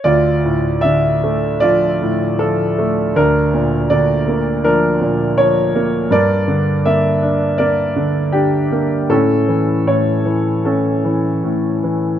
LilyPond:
<<
  \new Staff \with { instrumentName = "Grand piano" } { \time 4/4 \key d \minor \tempo 4 = 78 << { d''4 e''4 d''4 a'4 | bes'4 d''4 bes'4 cis''4 | d''4 e''4 d''4 g'4 | a'4 cis''4 a'4. r8 | } \\ { f'2 f'2 | d'2 d'2 | bes'2 bes'2 | cis'2 cis'2 | } >> }
  \new Staff \with { instrumentName = "Grand piano" } { \clef bass \time 4/4 \key d \minor d,8 a,8 d8 a8 f8 a,8 f8 a8 | d,8 bes,8 d8 bes8 f8 bes,8 f8 bes8 | g,8 d8 bes8 d'8 bes8 d8 d'8 bes8 | a,8 e8 a,8 e8 a,8 e8 a,8 e8 | }
>>